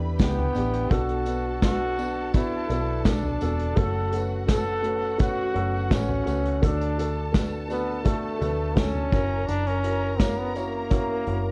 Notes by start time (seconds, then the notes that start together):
Already playing: E2 B3 D4 E4 G4 A4 B4 B5
0.18 C#2 B3 D4 E4 G4 G5, kick, snare, closed hi-hat, tambourine
0.39 floor tom
0.55 A1 B3 D4 E4 G4, closed hi-hat, tambourine
0.74 closed hi-hat
0.90 B1 B2 B3 D4 F#4 A4 A5, kick, closed hi-hat, tambourine
1.09 closed hi-hat
1.26 B3 D4 F#4 B4, closed hi-hat, tambourine
1.62 B3 D4 F#4 B4, kick, snare, closed hi-hat, tambourine
1.97 B3 D4 F#4 B4, closed hi-hat, tambourine
2.33 B3 D4 E4 F#4 B4, kick, closed hi-hat, tambourine
2.69 B1 B3 D4 F#4 A4, closed hi-hat, tambourine
3.05 B3 D4 F#4 A4, kick, snare, closed hi-hat, tambourine
3.24 floor tom
3.41 E1 B3 D4 F#4 A4, closed hi-hat, tambourine
3.59 closed hi-hat
3.76 F#1 A3 C#4 F#4 A4 F#5, kick, closed hi-hat, tambourine
4.12 A3 C#4 F#4 B4, closed hi-hat, tambourine
4.47 A3 C#4 F#4 A4 B4, kick, snare, closed hi-hat, tambourine
4.82 A3 C#4 F#4 B4, closed hi-hat, tambourine
5.18 A3 C#4 F#4 B4, kick, closed hi-hat, tambourine
5.54 F#1 A3 C#4 F#4 A4, closed hi-hat
5.90 A1 A3 C#4 F#4 B4, kick, snare, closed hi-hat, tambourine
6.09 floor tom
6.26 C#2 A3 C#4 F#4 B4, closed hi-hat, tambourine
6.45 closed hi-hat
6.62 D2 D3 A3 D4 F#4 A4 A5, kick, closed hi-hat, tambourine
6.81 closed hi-hat
6.98 A3 D4 F#4 A4, closed hi-hat, tambourine
7.32 A3 D4 F#4 B4, kick, snare, closed hi-hat, tambourine
7.68 A3 B3 D4 F#4 B4, closed hi-hat, tambourine
8.04 A3 D4 F#4 A4, kick, closed hi-hat, tambourine
8.39 D2 A3 D4 F#4 B4, closed hi-hat, floor tom, tambourine
8.76 D3 A3 C#4 F#4 A4, kick, snare, closed hi-hat, tambourine
8.95 floor tom
9.11 F#1 C#4 E4 F#4 A#4 A#5, kick, closed hi-hat, tambourine
9.48 F#1 D4, closed hi-hat, tambourine
9.67 C#4, closed hi-hat
9.83 C#4 E4 F#4 A#4, closed hi-hat, tambourine
10.19 A#3 C#4 E4 F#4 C#5, kick, snare, closed hi-hat, tambourine
10.38 B3
10.55 A#3 C#4 E4 F#4 C#5, closed hi-hat, tambourine
10.90 C#4 E4 F#4 A#4, kick, closed hi-hat, tambourine
11.26 F#1 C#4 E4 F#4 A#4, closed hi-hat